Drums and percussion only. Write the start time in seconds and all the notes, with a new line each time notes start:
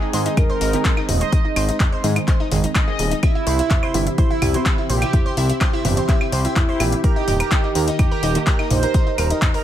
0.13 open hi-hat
0.26 closed hi-hat
0.37 kick, closed hi-hat, mid tom, claves
0.61 open hi-hat
0.73 closed hi-hat
0.85 kick, clap, closed hi-hat
0.97 claves
1.09 mid tom, open hi-hat
1.21 closed hi-hat
1.32 kick, closed hi-hat
1.56 open hi-hat, claves
1.69 closed hi-hat
1.80 kick, clap, closed hi-hat, mid tom
2.04 open hi-hat
2.16 closed hi-hat, claves
2.28 kick, clap, closed hi-hat
2.52 mid tom, open hi-hat
2.64 closed hi-hat
2.75 kick, clap, closed hi-hat, claves
2.99 open hi-hat
3.11 closed hi-hat
3.23 kick, closed hi-hat, claves
3.47 open hi-hat
3.59 closed hi-hat
3.71 kick, clap, closed hi-hat, mid tom
3.83 claves
3.94 open hi-hat
4.07 closed hi-hat
4.18 kick, closed hi-hat
4.42 mid tom, open hi-hat, claves
4.54 closed hi-hat
4.66 kick, clap, closed hi-hat
4.90 open hi-hat
5.02 closed hi-hat, claves
5.13 kick, closed hi-hat, mid tom
5.37 open hi-hat
5.50 closed hi-hat
5.61 kick, clap, closed hi-hat, claves
5.85 mid tom, open hi-hat
5.97 closed hi-hat
6.09 kick, clap, closed hi-hat
6.21 claves
6.32 open hi-hat
6.45 closed hi-hat
6.56 kick, clap, closed hi-hat, mid tom
6.80 open hi-hat, claves
6.92 closed hi-hat
7.04 kick, closed hi-hat
7.28 mid tom, open hi-hat
7.40 closed hi-hat, claves
7.51 kick, clap, closed hi-hat
7.75 open hi-hat
7.88 closed hi-hat
7.99 kick, closed hi-hat, mid tom, claves
8.23 open hi-hat
8.35 closed hi-hat
8.47 kick, clap, closed hi-hat
8.59 claves
8.71 mid tom, open hi-hat
8.83 closed hi-hat
8.94 kick, closed hi-hat
9.18 open hi-hat, claves
9.30 closed hi-hat
9.42 kick, clap, closed hi-hat, mid tom
9.54 open hi-hat